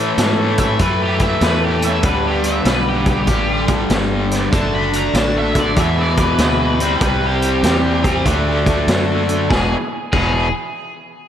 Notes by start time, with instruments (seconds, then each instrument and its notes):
Already playing: fretless electric bass A2, overdriven electric guitar A2 E3 A3, tonewheel organ C#4 E4 A4 C#5
0.18 fretless electric bass G#2, snare, closed hi-hat
0.58 lead electric guitar E5, kick, closed hi-hat
0.79 fretless electric bass F#2, overdriven electric guitar A2 E3 A3, lead electric guitar B4, kick, closed hi-hat
1.02 lead electric guitar G4
1.19 lead electric guitar E5, kick, closed hi-hat
1.41 fretless electric bass E2, lead electric guitar B4, snare, closed hi-hat
1.64 lead electric guitar G4
1.82 tonewheel organ C#4 E4 A4 C#5, lead electric guitar E5, closed hi-hat
2.03 fretless electric bass D2, overdriven electric guitar G2 D3 G3, tonewheel organ B3 D4 G4 B4, lead electric guitar B4, kick, closed hi-hat
2.27 lead electric guitar G4
2.44 lead electric guitar E5, closed hi-hat
2.65 fretless electric bass B1, lead electric guitar B4, snare, closed hi-hat
2.89 lead electric guitar G4
3.06 lead electric guitar G4, kick, closed hi-hat
3.27 fretless electric bass A1, overdriven electric guitar G2 D3 G3, kick, closed hi-hat
3.68 kick, closed hi-hat
3.90 fretless electric bass G1, snare, closed hi-hat
4.30 tonewheel organ B3 D4 G4 D5, snare, closed hi-hat
4.51 fretless electric bass F#1, overdriven electric guitar D3 A3 D4, tonewheel organ A3 D4 F#4 A4, lead electric guitar A5, kick, closed hi-hat
4.75 lead electric guitar B5
4.93 lead electric guitar A#5, closed hi-hat
5.13 fretless electric bass A1, lead electric guitar A5, snare, closed hi-hat
5.38 lead electric guitar E5
5.55 kick, closed hi-hat
5.60 lead electric guitar D5
5.76 fretless electric bass E2, overdriven electric guitar E2 B2 E3, tonewheel organ G#3 B3 E4 G#4, lead electric guitar E5, kick, closed hi-hat
6.01 lead electric guitar D5
6.17 kick, closed hi-hat
6.22 lead electric guitar B4
6.38 fretless electric bass D2, snare, closed hi-hat
6.80 overdriven electric guitar C3 G3 C4, tonewheel organ G3 C4 E4 G4, closed hi-hat
7.01 fretless electric bass C2, kick, closed hi-hat
7.05 lead electric guitar B4
7.26 lead electric guitar G4
7.42 closed hi-hat
7.63 fretless electric bass E2, snare, closed hi-hat
8.03 overdriven electric guitar C3 G3 C4, kick, closed hi-hat
8.25 fretless electric bass D2, overdriven electric guitar D3 A3 D4, tonewheel organ A3 D4 F#4 A4, kick, closed hi-hat
8.66 kick, closed hi-hat
8.87 fretless electric bass F#2, snare, closed hi-hat
9.29 tonewheel organ A3 D4 F#4 A4, closed hi-hat
9.50 fretless electric bass E1, overdriven electric guitar E2 B2 E3, tonewheel organ G#3 B3 E4 G#4, lead electric guitar G#4, kick, snare
10.12 fretless electric bass E1, overdriven electric guitar E2 B2 E3, lead electric guitar G#4, kick, crash